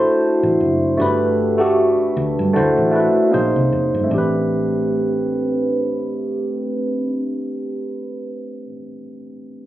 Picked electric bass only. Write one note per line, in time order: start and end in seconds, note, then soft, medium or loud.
0.43 0.56 A1 medium
0.60 0.98 F#1 medium
1.00 1.94 G1 medium
2.17 2.33 D2 medium
2.39 2.52 G2 medium
2.56 2.72 D2 medium
2.78 3.08 A1 medium
3.34 3.55 A#1 medium
3.56 3.68 C2 medium
3.72 3.89 F1 medium
3.94 4.07 G1 medium
4.11 8.68 A1 medium